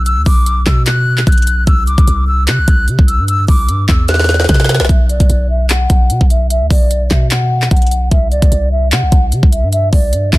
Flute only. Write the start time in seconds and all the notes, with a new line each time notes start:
0.06 E6
0.26 D6
0.66 E6
0.87 F#6
1.27 F#6
1.67 E6
1.87 D6
2.28 E6
2.48 F#6
3.08 E6
3.28 E6
3.48 D6
3.89 E6
4.09 F#6
4.49 F#6
4.89 E5
5.09 D5
5.50 E5
5.70 F#5
6.30 E5
6.50 E5
6.71 D5
7.11 E5
7.31 F#5
7.71 F#5
8.11 E5
8.32 D5
8.72 E5
8.92 F#5
9.52 E5
9.73 E5
9.93 D5
10.33 E5